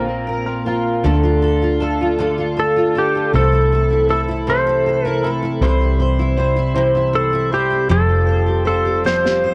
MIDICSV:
0, 0, Header, 1, 6, 480
1, 0, Start_track
1, 0, Tempo, 764331
1, 650, Time_signature, 6, 3, 24, 8
1, 5992, End_track
2, 0, Start_track
2, 0, Title_t, "Electric slide guitar"
2, 0, Program_c, 0, 29
2, 0, Note_on_c, 0, 70, 75
2, 388, Note_off_c, 0, 70, 0
2, 1630, Note_on_c, 0, 69, 65
2, 1869, Note_off_c, 0, 69, 0
2, 1874, Note_on_c, 0, 67, 59
2, 2104, Note_off_c, 0, 67, 0
2, 2107, Note_on_c, 0, 69, 67
2, 2570, Note_off_c, 0, 69, 0
2, 2577, Note_on_c, 0, 69, 64
2, 2641, Note_off_c, 0, 69, 0
2, 2824, Note_on_c, 0, 72, 76
2, 3188, Note_off_c, 0, 72, 0
2, 3188, Note_on_c, 0, 70, 76
2, 3329, Note_off_c, 0, 70, 0
2, 4493, Note_on_c, 0, 69, 68
2, 4732, Note_off_c, 0, 69, 0
2, 4734, Note_on_c, 0, 67, 62
2, 4967, Note_off_c, 0, 67, 0
2, 4970, Note_on_c, 0, 69, 75
2, 5439, Note_off_c, 0, 69, 0
2, 5446, Note_on_c, 0, 69, 71
2, 5669, Note_off_c, 0, 69, 0
2, 5691, Note_on_c, 0, 72, 81
2, 5992, Note_off_c, 0, 72, 0
2, 5992, End_track
3, 0, Start_track
3, 0, Title_t, "Steel-string acoustic guitar"
3, 0, Program_c, 1, 25
3, 0, Note_on_c, 1, 46, 64
3, 0, Note_on_c, 1, 58, 51
3, 0, Note_on_c, 1, 60, 48
3, 0, Note_on_c, 1, 65, 53
3, 169, Note_on_c, 1, 70, 48
3, 412, Note_off_c, 1, 65, 0
3, 415, Note_on_c, 1, 65, 46
3, 648, Note_off_c, 1, 46, 0
3, 653, Note_on_c, 1, 50, 73
3, 654, Note_off_c, 1, 70, 0
3, 656, Note_on_c, 1, 69, 54
3, 698, Note_off_c, 1, 60, 0
3, 700, Note_off_c, 1, 58, 0
3, 772, Note_off_c, 1, 65, 0
3, 775, Note_on_c, 1, 65, 51
3, 890, Note_off_c, 1, 69, 0
3, 893, Note_on_c, 1, 69, 55
3, 1010, Note_off_c, 1, 65, 0
3, 1018, Note_on_c, 1, 65, 49
3, 1130, Note_off_c, 1, 69, 0
3, 1132, Note_on_c, 1, 69, 56
3, 1253, Note_off_c, 1, 65, 0
3, 1261, Note_on_c, 1, 65, 48
3, 1365, Note_off_c, 1, 50, 0
3, 1373, Note_on_c, 1, 50, 64
3, 1376, Note_off_c, 1, 69, 0
3, 1379, Note_on_c, 1, 69, 58
3, 1487, Note_off_c, 1, 65, 0
3, 1494, Note_on_c, 1, 65, 49
3, 1609, Note_off_c, 1, 69, 0
3, 1612, Note_on_c, 1, 69, 58
3, 1727, Note_off_c, 1, 65, 0
3, 1735, Note_on_c, 1, 65, 54
3, 1850, Note_off_c, 1, 69, 0
3, 1853, Note_on_c, 1, 69, 56
3, 1970, Note_off_c, 1, 65, 0
3, 1977, Note_on_c, 1, 65, 47
3, 2094, Note_on_c, 1, 48, 65
3, 2098, Note_off_c, 1, 69, 0
3, 2100, Note_on_c, 1, 69, 58
3, 2142, Note_off_c, 1, 50, 0
3, 2143, Note_off_c, 1, 65, 0
3, 2212, Note_on_c, 1, 64, 49
3, 2330, Note_off_c, 1, 69, 0
3, 2337, Note_on_c, 1, 69, 55
3, 2448, Note_off_c, 1, 64, 0
3, 2450, Note_on_c, 1, 64, 47
3, 2560, Note_off_c, 1, 69, 0
3, 2568, Note_on_c, 1, 69, 57
3, 2687, Note_off_c, 1, 64, 0
3, 2690, Note_on_c, 1, 64, 50
3, 2800, Note_off_c, 1, 48, 0
3, 2802, Note_off_c, 1, 69, 0
3, 2807, Note_on_c, 1, 48, 68
3, 2812, Note_on_c, 1, 69, 53
3, 2928, Note_off_c, 1, 64, 0
3, 2930, Note_on_c, 1, 64, 50
3, 3046, Note_off_c, 1, 69, 0
3, 3053, Note_on_c, 1, 69, 53
3, 3168, Note_off_c, 1, 64, 0
3, 3170, Note_on_c, 1, 64, 53
3, 3284, Note_off_c, 1, 69, 0
3, 3292, Note_on_c, 1, 69, 59
3, 3405, Note_off_c, 1, 64, 0
3, 3407, Note_on_c, 1, 64, 54
3, 3521, Note_off_c, 1, 48, 0
3, 3528, Note_off_c, 1, 69, 0
3, 3529, Note_on_c, 1, 48, 82
3, 3532, Note_on_c, 1, 72, 64
3, 3647, Note_off_c, 1, 64, 0
3, 3650, Note_on_c, 1, 64, 55
3, 3763, Note_off_c, 1, 72, 0
3, 3765, Note_on_c, 1, 72, 59
3, 3880, Note_off_c, 1, 64, 0
3, 3888, Note_on_c, 1, 64, 55
3, 4001, Note_off_c, 1, 72, 0
3, 4003, Note_on_c, 1, 72, 57
3, 4115, Note_off_c, 1, 64, 0
3, 4122, Note_on_c, 1, 64, 56
3, 4237, Note_off_c, 1, 48, 0
3, 4243, Note_on_c, 1, 48, 71
3, 4244, Note_off_c, 1, 72, 0
3, 4247, Note_on_c, 1, 72, 45
3, 4356, Note_off_c, 1, 64, 0
3, 4364, Note_on_c, 1, 64, 49
3, 4478, Note_off_c, 1, 72, 0
3, 4480, Note_on_c, 1, 72, 52
3, 4595, Note_off_c, 1, 64, 0
3, 4602, Note_on_c, 1, 64, 55
3, 4723, Note_off_c, 1, 72, 0
3, 4725, Note_on_c, 1, 72, 59
3, 4830, Note_off_c, 1, 64, 0
3, 4838, Note_on_c, 1, 64, 52
3, 4957, Note_on_c, 1, 53, 82
3, 4959, Note_off_c, 1, 72, 0
3, 4961, Note_on_c, 1, 72, 66
3, 5008, Note_off_c, 1, 64, 0
3, 5010, Note_off_c, 1, 48, 0
3, 5078, Note_on_c, 1, 67, 50
3, 5185, Note_off_c, 1, 72, 0
3, 5193, Note_on_c, 1, 72, 57
3, 5306, Note_off_c, 1, 67, 0
3, 5314, Note_on_c, 1, 67, 51
3, 5425, Note_off_c, 1, 72, 0
3, 5433, Note_on_c, 1, 72, 56
3, 5551, Note_off_c, 1, 67, 0
3, 5559, Note_on_c, 1, 67, 49
3, 5675, Note_off_c, 1, 72, 0
3, 5677, Note_off_c, 1, 53, 0
3, 5679, Note_on_c, 1, 53, 64
3, 5683, Note_on_c, 1, 72, 55
3, 5796, Note_off_c, 1, 67, 0
3, 5803, Note_on_c, 1, 67, 49
3, 5919, Note_off_c, 1, 72, 0
3, 5926, Note_on_c, 1, 72, 52
3, 5992, Note_off_c, 1, 53, 0
3, 5992, Note_off_c, 1, 67, 0
3, 5992, Note_off_c, 1, 72, 0
3, 5992, End_track
4, 0, Start_track
4, 0, Title_t, "Clean electric guitar"
4, 0, Program_c, 2, 27
4, 47, Note_on_c, 2, 70, 55
4, 55, Note_on_c, 2, 65, 43
4, 59, Note_on_c, 2, 60, 46
4, 64, Note_on_c, 2, 58, 43
4, 283, Note_off_c, 2, 70, 0
4, 288, Note_off_c, 2, 65, 0
4, 290, Note_on_c, 2, 70, 49
4, 295, Note_off_c, 2, 60, 0
4, 295, Note_on_c, 2, 65, 46
4, 297, Note_off_c, 2, 58, 0
4, 302, Note_on_c, 2, 60, 42
4, 307, Note_on_c, 2, 58, 36
4, 403, Note_off_c, 2, 58, 0
4, 409, Note_off_c, 2, 60, 0
4, 410, Note_off_c, 2, 70, 0
4, 410, Note_on_c, 2, 58, 42
4, 412, Note_off_c, 2, 65, 0
4, 417, Note_on_c, 2, 60, 45
4, 423, Note_on_c, 2, 65, 51
4, 426, Note_on_c, 2, 70, 55
4, 650, Note_on_c, 2, 50, 71
4, 651, Note_off_c, 2, 58, 0
4, 654, Note_off_c, 2, 60, 0
4, 654, Note_off_c, 2, 65, 0
4, 654, Note_on_c, 2, 57, 76
4, 658, Note_on_c, 2, 62, 74
4, 659, Note_off_c, 2, 70, 0
4, 661, Note_on_c, 2, 65, 74
4, 662, Note_on_c, 2, 69, 64
4, 1133, Note_off_c, 2, 50, 0
4, 1135, Note_off_c, 2, 57, 0
4, 1135, Note_off_c, 2, 62, 0
4, 1137, Note_on_c, 2, 57, 57
4, 1138, Note_off_c, 2, 65, 0
4, 1143, Note_on_c, 2, 62, 59
4, 1148, Note_on_c, 2, 65, 53
4, 1152, Note_off_c, 2, 69, 0
4, 1154, Note_on_c, 2, 69, 63
4, 1370, Note_off_c, 2, 69, 0
4, 1372, Note_off_c, 2, 65, 0
4, 1376, Note_off_c, 2, 57, 0
4, 1376, Note_off_c, 2, 62, 0
4, 1378, Note_on_c, 2, 69, 50
4, 1379, Note_on_c, 2, 65, 49
4, 1383, Note_on_c, 2, 62, 51
4, 1386, Note_on_c, 2, 57, 49
4, 1388, Note_on_c, 2, 50, 45
4, 1851, Note_off_c, 2, 69, 0
4, 1854, Note_on_c, 2, 69, 35
4, 1855, Note_off_c, 2, 65, 0
4, 1860, Note_off_c, 2, 62, 0
4, 1862, Note_off_c, 2, 50, 0
4, 1862, Note_on_c, 2, 65, 39
4, 1871, Note_on_c, 2, 62, 37
4, 2094, Note_off_c, 2, 69, 0
4, 2094, Note_on_c, 2, 48, 59
4, 2096, Note_off_c, 2, 57, 0
4, 2097, Note_on_c, 2, 52, 61
4, 2098, Note_off_c, 2, 65, 0
4, 2099, Note_off_c, 2, 62, 0
4, 2099, Note_on_c, 2, 57, 62
4, 2101, Note_on_c, 2, 60, 72
4, 2102, Note_on_c, 2, 64, 67
4, 2106, Note_on_c, 2, 69, 70
4, 2565, Note_off_c, 2, 57, 0
4, 2572, Note_off_c, 2, 48, 0
4, 2572, Note_on_c, 2, 57, 51
4, 2578, Note_off_c, 2, 60, 0
4, 2578, Note_off_c, 2, 69, 0
4, 2581, Note_on_c, 2, 60, 51
4, 2582, Note_off_c, 2, 64, 0
4, 2585, Note_on_c, 2, 64, 59
4, 2591, Note_on_c, 2, 69, 57
4, 2804, Note_off_c, 2, 69, 0
4, 2806, Note_off_c, 2, 64, 0
4, 2809, Note_off_c, 2, 60, 0
4, 2811, Note_off_c, 2, 57, 0
4, 2811, Note_on_c, 2, 69, 43
4, 2813, Note_on_c, 2, 64, 40
4, 2817, Note_on_c, 2, 60, 44
4, 2818, Note_off_c, 2, 52, 0
4, 2819, Note_on_c, 2, 57, 40
4, 2820, Note_on_c, 2, 52, 40
4, 2822, Note_on_c, 2, 48, 43
4, 3279, Note_off_c, 2, 69, 0
4, 3287, Note_on_c, 2, 69, 47
4, 3291, Note_off_c, 2, 64, 0
4, 3292, Note_off_c, 2, 57, 0
4, 3293, Note_on_c, 2, 64, 38
4, 3294, Note_off_c, 2, 48, 0
4, 3298, Note_off_c, 2, 60, 0
4, 3301, Note_on_c, 2, 60, 35
4, 3303, Note_on_c, 2, 57, 35
4, 3526, Note_off_c, 2, 52, 0
4, 3526, Note_off_c, 2, 60, 0
4, 3526, Note_off_c, 2, 69, 0
4, 3526, Note_on_c, 2, 48, 73
4, 3528, Note_off_c, 2, 57, 0
4, 3528, Note_off_c, 2, 64, 0
4, 3528, Note_on_c, 2, 52, 74
4, 3530, Note_on_c, 2, 55, 73
4, 3534, Note_on_c, 2, 60, 82
4, 3535, Note_on_c, 2, 64, 80
4, 3538, Note_on_c, 2, 72, 78
4, 3996, Note_off_c, 2, 55, 0
4, 3998, Note_on_c, 2, 55, 57
4, 4003, Note_off_c, 2, 60, 0
4, 4004, Note_off_c, 2, 48, 0
4, 4004, Note_off_c, 2, 64, 0
4, 4005, Note_off_c, 2, 52, 0
4, 4006, Note_on_c, 2, 60, 64
4, 4011, Note_on_c, 2, 64, 63
4, 4014, Note_off_c, 2, 72, 0
4, 4016, Note_on_c, 2, 72, 62
4, 4230, Note_off_c, 2, 72, 0
4, 4233, Note_off_c, 2, 64, 0
4, 4236, Note_off_c, 2, 60, 0
4, 4237, Note_on_c, 2, 72, 57
4, 4240, Note_off_c, 2, 55, 0
4, 4241, Note_on_c, 2, 64, 47
4, 4243, Note_on_c, 2, 60, 52
4, 4246, Note_on_c, 2, 55, 48
4, 4247, Note_on_c, 2, 52, 56
4, 4249, Note_on_c, 2, 48, 39
4, 4717, Note_off_c, 2, 72, 0
4, 4719, Note_off_c, 2, 64, 0
4, 4719, Note_on_c, 2, 72, 45
4, 4723, Note_off_c, 2, 52, 0
4, 4725, Note_off_c, 2, 48, 0
4, 4726, Note_on_c, 2, 64, 40
4, 4729, Note_off_c, 2, 60, 0
4, 4731, Note_on_c, 2, 60, 38
4, 4732, Note_off_c, 2, 55, 0
4, 4735, Note_on_c, 2, 55, 32
4, 4955, Note_off_c, 2, 55, 0
4, 4958, Note_off_c, 2, 60, 0
4, 4959, Note_on_c, 2, 53, 64
4, 4960, Note_off_c, 2, 72, 0
4, 4963, Note_on_c, 2, 55, 74
4, 4964, Note_off_c, 2, 64, 0
4, 4965, Note_on_c, 2, 60, 63
4, 4968, Note_on_c, 2, 65, 72
4, 4971, Note_on_c, 2, 72, 70
4, 5434, Note_off_c, 2, 55, 0
4, 5440, Note_off_c, 2, 60, 0
4, 5442, Note_on_c, 2, 55, 58
4, 5448, Note_off_c, 2, 72, 0
4, 5448, Note_on_c, 2, 60, 55
4, 5451, Note_off_c, 2, 65, 0
4, 5453, Note_on_c, 2, 65, 56
4, 5458, Note_on_c, 2, 72, 56
4, 5460, Note_off_c, 2, 53, 0
4, 5679, Note_off_c, 2, 72, 0
4, 5684, Note_off_c, 2, 55, 0
4, 5684, Note_off_c, 2, 65, 0
4, 5686, Note_on_c, 2, 72, 43
4, 5687, Note_off_c, 2, 60, 0
4, 5691, Note_on_c, 2, 65, 38
4, 5695, Note_on_c, 2, 60, 46
4, 5696, Note_on_c, 2, 55, 43
4, 5700, Note_on_c, 2, 53, 31
4, 5992, Note_off_c, 2, 53, 0
4, 5992, Note_off_c, 2, 55, 0
4, 5992, Note_off_c, 2, 60, 0
4, 5992, Note_off_c, 2, 65, 0
4, 5992, Note_off_c, 2, 72, 0
4, 5992, End_track
5, 0, Start_track
5, 0, Title_t, "Fingered electric bass"
5, 0, Program_c, 3, 33
5, 0, Note_on_c, 3, 34, 81
5, 628, Note_off_c, 3, 34, 0
5, 656, Note_on_c, 3, 38, 74
5, 2072, Note_off_c, 3, 38, 0
5, 2096, Note_on_c, 3, 36, 77
5, 3502, Note_off_c, 3, 36, 0
5, 3523, Note_on_c, 3, 36, 75
5, 4935, Note_off_c, 3, 36, 0
5, 4959, Note_on_c, 3, 29, 86
5, 5992, Note_off_c, 3, 29, 0
5, 5992, End_track
6, 0, Start_track
6, 0, Title_t, "Drums"
6, 5693, Note_on_c, 9, 38, 55
6, 5755, Note_off_c, 9, 38, 0
6, 5814, Note_on_c, 9, 38, 46
6, 5876, Note_off_c, 9, 38, 0
6, 5992, End_track
0, 0, End_of_file